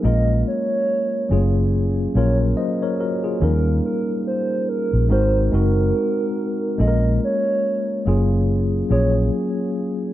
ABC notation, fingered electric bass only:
X:1
M:4/4
L:1/16
Q:"Swing 16ths" 1/4=71
K:Gblyd
V:1 name="Fingered electric bass" clef=bass
B,,,2 z4 G,,,4 B,,,2 z4 | E,,2 z4 z B,,, A,,,2 G,,,2 z4 | B,,,2 z4 G,,,4 B,,,2 z4 |]